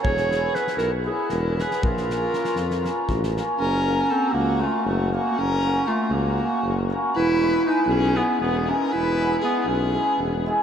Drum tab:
SD |-oo-ooo---o-oo|-oo-ooooo-ooo-|--------------|--------------|
BD |o-------------|o---------o---|--------------|--------------|

SD |--------------|--------------|
BD |--------------|--------------|